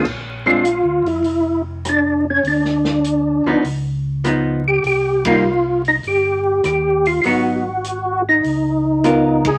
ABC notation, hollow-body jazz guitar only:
X:1
M:4/4
L:1/8
Q:"Swing" 1/4=100
K:Cm
V:1 name="Hollow-body jazz guitar"
z [A,CD] z6 | z3 [F,=B,E] z2 [F,_CE] z | z [G,B,E] z6 | [_G,_CE] z4 z [CFB] z |]